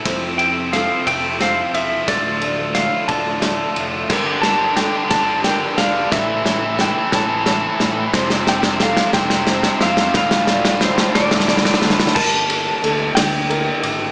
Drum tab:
CC |------------------------|------------------------|x-----------------------|------------------------|
RD |x---x---x---x---x---x---|x---x---x---x---x---x---|----x---x---x---x---x---|------------------------|
SD |o-------o-------o-------|o-------o-------o-------|o---o---o---o---o---o---|o---o---o---o---o---o---|
BD |o-----------o-----------|o-----------o-----------|o-----------o-----------|o-----------o-----------|

CC |------------------------|------------------------|x-----------------------|
RD |------------------------|------------------------|----x---x---x---x---x---|
SD |o-o-o-o-o-o-o-o-o-o-o-o-|o-o-o-o-o-o-o-oooooooooo|------------o-----------|
BD |o-----------o-----------|o-----------o-----------|o-----------------------|